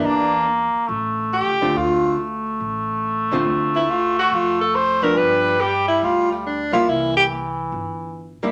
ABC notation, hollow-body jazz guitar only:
X:1
M:4/4
L:1/8
Q:"Swing" 1/4=141
K:Dm
V:1 name="Hollow-body jazz guitar"
[E,B,DG]2 z4 z [D,A,CF]- | [D,A,CF]2 z4 z [D,A,CF]- | [D,A,CF]2 z4 z [F,=B,D]- | [F,=B,D]2 z4 z [G,_B,E]- |
[G,B,E]2 z4 z [G,B,E] |]